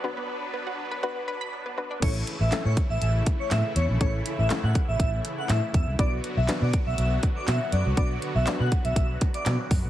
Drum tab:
CC |----------------|x---------------|----------------|----------------|
HH |----------------|x-x-x-x-x-x-x-x-|x-x-x-x-x-x-x-x-|x-x-x-x-x-x-x-x-|
CP |----------------|----x-------x---|----x-------x---|----x-------x---|
SD |----------------|----o-------o---|----o-------o---|----o-------o---|
BD |----------------|o-----o---o-----|o-----o-o-----o-|o-----o---o-----|

CC |----------------|
HH |x-x-x-xxx-xxx-o-|
CP |----x-------x---|
SD |----o-------o---|
BD |o-----o-o-o---o-|